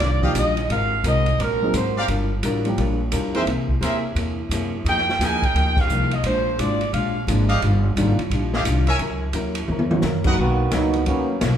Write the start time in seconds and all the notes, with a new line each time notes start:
Already playing: D5
0.00 C2 D#3 G3 D4 F4, snare, ride
0.22 F3 A#3 D4 D#4 G4 D5 D#5 F5, kick
0.35 A#1 D#3 G3 D4 F4 D#5, hi-hat pedal, ride
0.57 ride
0.69 G#1 G#3 C4 F#4 A#4 F5, ride
1.04 C2 G#3 C4 F#4 A#4 D#5, hi-hat pedal, ride
1.26 ride
1.38 A#1 G#3 C4 F#4 A#4, ride
1.62 F#3 A#3 C4 D#4 G#4
1.73 G#1 G#3 C4 F#4 A#4 C5, hi-hat pedal, ride
1.97 G4 A#4 D5 F5
2.08 G1 G3 D4 F4 A#4, ride
2.43 A1 G3 D4 F4 A#4, hi-hat pedal, ride
2.65 F3 G3 A#3 D4 G4, ride
2.78 A#1 G3 D4 F4 A#4, ride
3.12 F2 G3 D4 F4 A#4, hi-hat pedal, ride
3.34 E3 A#3 C4 D#4 G#4 A#4 C5 E5, ride
3.46 C2 C3 A#3 E4 G#4, ride
3.69 kick
3.81 D#2 C3 A#3 E4 G#4 A#4 C5 E5, hi-hat pedal, ride
4.15 E2 C3 A#3 E4 G#4, ride
4.49 F#2 C3 A#3 E4, hi-hat pedal, ride
4.53 G#4
4.85 F2 F3 A#3 D#4 G#4 A#4 D#5 G5, ride
4.89 G#4 G5
4.98 snare
5.09 snare
5.19 D#2 F3 A#3 D#4 G#4 A#4 D#5 G5, snare, hi-hat pedal, ride
5.25 G#5
5.42 G5, kick, ride
5.54 D2 F3 A#3 D#4 G#4, ride
5.77 F5, kick, crash
5.88 C2 F3 A#3 D#4 G#4, hi-hat pedal
6.11 D#5, ride
6.23 A#1 A#2 G#3 D4 F4 C5, ride
6.58 G#1 A#2 G#3 D4 F4 D5, hi-hat pedal, ride
6.81 ride
6.93 A#1 A#2 G#3 D4 F4 F5, ride
7.27 G#1 A#2 F3 G#3 A#3 D4 F4 G#4, hi-hat pedal, ride
7.49 G4 D5 D#5 F5, ride
7.61 G1 D#3 G3 D4 F4, ride
7.96 G#1 D#3 G3 A#3 D4 F4, hi-hat pedal, ride
8.18 muted upright bass stroke, ride
8.30 A#1 D#3 G3 D4, ride
8.34 F4
8.53 G4 D5 D#5 F5, snare
8.64 C2 D#3 G3 D4 F4, hi-hat pedal, ride
8.87 A#4 C#5 E5 G#5, ride
8.99 C#2 F#3 C#4 E4 A#4, ride
9.33 D#2 F#3 C#4 E4 A#4, hi-hat pedal, ride
9.55 ride
9.68 E2 F#3 C#4 E4 A#4, mid tom
9.79 mid tom
9.91 E3 F#3 A#3 C#4 F#4, mid tom
10.02 F#2 F#3 C#4 E4 A#4, snare, hi-hat pedal
10.24 D#3 F#3 A#3 B3 F#4 A#4 B4 D#5 F#5, kick, crash
10.37 B1 B2 D#3 F#3 A#3 B3 D#4 F#4
10.71 C#2 B2 D#3 F#3 A#3 B3 D#4 F#4, snare, hi-hat pedal, ride
10.94 ride
11.06 D#2 B2 F#3 A#3 B3 C#4 D#4, ride
11.41 B1 B2 F#3 A#3 D#4, snare, hi-hat pedal, ride